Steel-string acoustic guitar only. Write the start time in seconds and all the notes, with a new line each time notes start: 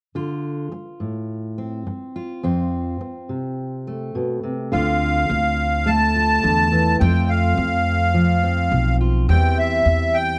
0.15 D3 F4
0.72 muted steel-string acoustic guitar stroke
1.00 A2
1.58 C4
1.87 muted steel-string acoustic guitar stroke
2.16 F4
2.43 F2 C4
3.01 muted steel-string acoustic guitar stroke
3.29 C3
3.87 A3
4.15 B2
4.43 C3
4.72 D3 C4 F4
5.30 muted steel-string acoustic guitar stroke
5.86 A3
6.16 F4
6.43 D3
6.72 E3
7.00 F2 A3 C4 F4
7.58 muted steel-string acoustic guitar stroke
8.14 F3
8.43 C4
8.71 muted steel-string acoustic guitar stroke
9.01 F4
9.29 E2 G3 C4 E4
9.85 muted steel-string acoustic guitar stroke